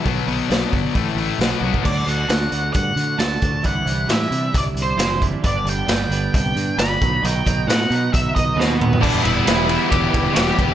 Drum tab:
CC |----------------|x---------------|----------------|----------------|
RD |----------------|----------------|----------------|----------------|
HH |o-o-o-o-o-o-o---|--x-x-x-x-x-x-x-|x-x-x-x-x-x-x-x-|x-x-x-x-x-x-x-x-|
SD |----o-------o---|----o-------o---|----o-------o---|----o-------o---|
T1 |--------------o-|----------------|----------------|----------------|
T2 |----------------|----------------|----------------|----------------|
FT |----------------|----------------|----------------|----------------|
BD |o-----o-o------o|o-------o-----o-|o-------o-----o-|o-------o-----o-|

CC |----------------|x---------------|
RD |----------------|--x-x-x-x-x-x-x-|
HH |x-x-x-x-x-x-----|----------------|
SD |----o-------o---|----o-------o---|
T1 |----------------|----------------|
T2 |--------------o-|----------------|
FT |---------------o|----------------|
BD |--o-----o-o-----|o-------o-o---o-|